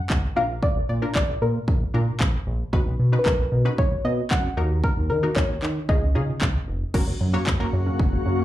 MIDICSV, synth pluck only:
0, 0, Header, 1, 2, 480
1, 0, Start_track
1, 0, Tempo, 526316
1, 571, Time_signature, 4, 2, 24, 8
1, 7703, End_track
2, 0, Start_track
2, 0, Title_t, "Synth pluck"
2, 0, Program_c, 0, 84
2, 0, Note_on_c, 0, 78, 106
2, 333, Note_on_c, 0, 77, 99
2, 345, Note_off_c, 0, 78, 0
2, 441, Note_off_c, 0, 77, 0
2, 572, Note_on_c, 0, 74, 102
2, 680, Note_off_c, 0, 74, 0
2, 814, Note_on_c, 0, 74, 94
2, 1036, Note_off_c, 0, 74, 0
2, 1053, Note_on_c, 0, 74, 91
2, 1294, Note_on_c, 0, 70, 81
2, 1299, Note_off_c, 0, 74, 0
2, 1739, Note_off_c, 0, 70, 0
2, 2908, Note_on_c, 0, 71, 65
2, 2971, Note_off_c, 0, 71, 0
2, 2971, Note_on_c, 0, 70, 89
2, 3453, Note_on_c, 0, 73, 101
2, 3466, Note_off_c, 0, 70, 0
2, 3675, Note_off_c, 0, 73, 0
2, 3691, Note_on_c, 0, 75, 100
2, 3914, Note_off_c, 0, 75, 0
2, 3930, Note_on_c, 0, 78, 103
2, 4411, Note_on_c, 0, 70, 102
2, 4425, Note_off_c, 0, 78, 0
2, 4637, Note_off_c, 0, 70, 0
2, 4648, Note_on_c, 0, 70, 93
2, 4888, Note_on_c, 0, 73, 93
2, 4897, Note_off_c, 0, 70, 0
2, 5371, Note_on_c, 0, 75, 88
2, 5384, Note_off_c, 0, 73, 0
2, 5817, Note_off_c, 0, 75, 0
2, 7703, End_track
0, 0, End_of_file